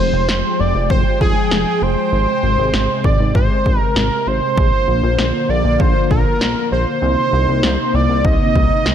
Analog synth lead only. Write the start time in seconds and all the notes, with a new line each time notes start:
Already playing: C5
0.60 D5
0.91 C5
1.21 G#4
1.82 C5
3.05 D5
3.35 C5
3.79 A#4
3.97 A#4
4.27 C5
5.50 D5
5.80 C5
6.11 A#4
6.72 C5
7.95 D5
8.25 D#5